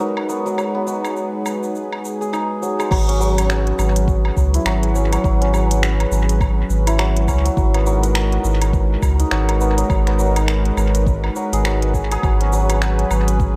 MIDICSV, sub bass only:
0, 0, Header, 1, 2, 480
1, 0, Start_track
1, 0, Tempo, 582524
1, 480, Time_signature, 4, 2, 24, 8
1, 11175, End_track
2, 0, Start_track
2, 0, Title_t, "Sub bass"
2, 0, Program_c, 0, 38
2, 2397, Note_on_c, 0, 32, 90
2, 3070, Note_off_c, 0, 32, 0
2, 3119, Note_on_c, 0, 32, 110
2, 3551, Note_off_c, 0, 32, 0
2, 3598, Note_on_c, 0, 37, 104
2, 3778, Note_off_c, 0, 37, 0
2, 3835, Note_on_c, 0, 32, 90
2, 4268, Note_off_c, 0, 32, 0
2, 4318, Note_on_c, 0, 32, 99
2, 4990, Note_off_c, 0, 32, 0
2, 5036, Note_on_c, 0, 32, 108
2, 5469, Note_off_c, 0, 32, 0
2, 5518, Note_on_c, 0, 32, 104
2, 5997, Note_on_c, 0, 37, 89
2, 6010, Note_off_c, 0, 32, 0
2, 6178, Note_off_c, 0, 37, 0
2, 6236, Note_on_c, 0, 32, 99
2, 6909, Note_off_c, 0, 32, 0
2, 6956, Note_on_c, 0, 32, 106
2, 7389, Note_off_c, 0, 32, 0
2, 7436, Note_on_c, 0, 37, 105
2, 7617, Note_off_c, 0, 37, 0
2, 7675, Note_on_c, 0, 32, 93
2, 8108, Note_off_c, 0, 32, 0
2, 8155, Note_on_c, 0, 32, 99
2, 8828, Note_off_c, 0, 32, 0
2, 8873, Note_on_c, 0, 32, 110
2, 9307, Note_off_c, 0, 32, 0
2, 9497, Note_on_c, 0, 32, 81
2, 10028, Note_off_c, 0, 32, 0
2, 10079, Note_on_c, 0, 32, 96
2, 10750, Note_off_c, 0, 32, 0
2, 10797, Note_on_c, 0, 32, 106
2, 11175, Note_off_c, 0, 32, 0
2, 11175, End_track
0, 0, End_of_file